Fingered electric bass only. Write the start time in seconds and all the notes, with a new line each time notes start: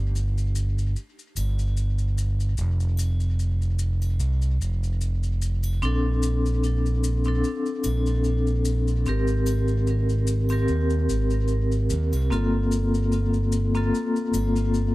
Already playing: G1
1.37 G1
2.58 F1
4.20 C2
4.61 F1
5.82 A#1
7.86 A#1
9.07 G#1
10.69 D#2
11.10 G#1
11.91 D#2
12.13 C2
12.31 G1
14.34 G1